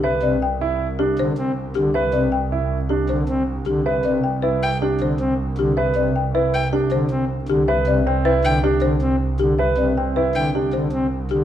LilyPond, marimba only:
\new Staff \with { instrumentName = "Marimba" } { \time 5/4 \key c \major \tempo 4 = 157 e''8 d''8 g''8 r4 g'8 c''8 r4 g'8 | e''8 d''8 g''8 r4 g'8 c''8 r4 g'8 | e''8 d''8 g''8 b'8 r8 g'8 c''8 r4 g'8 | e''8 d''8 g''8 b'8 r8 g'8 c''8 r4 g'8 |
e''8 d''8 g''8 b'8 r8 g'8 c''8 r4 g'8 | e''8 d''8 g''8 b'8 r8 g'8 c''8 r4 g'8 | }